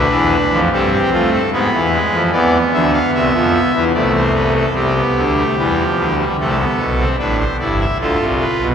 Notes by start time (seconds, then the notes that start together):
Already playing: D4 B4
0.11 E2 E3
0.51 F2 F3
0.72 G2 G3 C4 A4
0.92 G4
1.13 A3 F4
1.32 A4
1.52 G#2 G#3 B3 B4
1.73 E2 E3
1.92 G#3
2.13 F2 F3
2.32 E2 E3 B3 D5
2.73 D2 D3 E5
2.93 F5
3.14 C2 C3 E5
3.34 F2 F3
3.74 E2 E3
3.94 C2 C3 A3 D5
4.15 C5
4.34 B4
4.56 A4
4.74 C2 C3 C4 G4
4.97 B3
5.17 D2 D3
5.37 A3
5.58 E2 E3 G3
5.79 F3
5.99 D2 D3
6.19 G3
6.39 C2 C3 A3 A4
6.59 B3
6.80 B1 B2
6.99 C4
7.19 A1 A2 D4 B4
7.39 C5
7.60 G1 G2 E4 D5
7.80 E5
8.00 D2 D3 F4 A4
8.20 C2 C3
8.40 B4
8.61 B1 B2